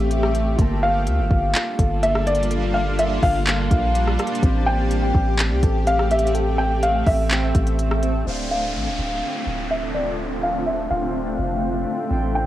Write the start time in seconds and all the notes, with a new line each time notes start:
Already playing: A1 A3 C4 G4 C5 E5 G5
0.11 closed hi-hat
0.23 cross-stick
0.35 A3, closed hi-hat
0.56 G1 G3 A#3 D4 F4 A#4 A5, kick, closed hi-hat
0.62 A5
0.83 F4 F5
1.07 D2, closed hi-hat
1.19 G1
1.31 G1, kick
1.55 F4, clap, closed hi-hat
1.79 G1 A4, kick, closed hi-hat
2.03 A#3 E5, closed hi-hat
2.15 cross-stick
2.27 D5, closed hi-hat
2.35 closed hi-hat
2.43 closed hi-hat
2.51 G4 A4, closed hi-hat
2.74 A#3 F5
2.99 F4 E5, closed hi-hat
3.23 G1 F5, kick, open hi-hat
3.47 A#3, clap, closed hi-hat
3.71 A#1 F4, kick, closed hi-hat
3.95 closed hi-hat
4.07 cross-stick
4.19 A#3, cross-stick, closed hi-hat
4.27 closed hi-hat
4.35 closed hi-hat
4.43 A1 A3 C4 G4 C5, kick, closed hi-hat
4.66 G4 G5
4.91 closed hi-hat
5.15 A1, kick
5.38 G4, clap, closed hi-hat
5.51 C2
5.63 A1 A4, kick, closed hi-hat
5.87 C4 F5, closed hi-hat
5.99 cross-stick
6.11 E5, closed hi-hat
6.19 closed hi-hat
6.27 closed hi-hat
6.34 A4 G5, closed hi-hat
6.58 C4 G5
6.83 G4 F5, closed hi-hat
7.07 A1 E5, kick, open hi-hat
7.31 C4, clap, closed hi-hat
7.54 A1 G4, kick, closed hi-hat
7.67 closed hi-hat
7.79 closed hi-hat
7.91 cross-stick
8.03 C4, closed hi-hat
8.24 D1 D3 A3 C4 D4 F4 C5, downlifter
8.29 F5
8.51 F5
8.75 A1
8.87 D1
8.99 D1
9.47 D1
9.71 E5
9.94 D5
10.43 F5
10.66 E5
10.90 D1 F5
11.39 F1
12.09 A1 C4 A4
12.13 G5
12.35 G5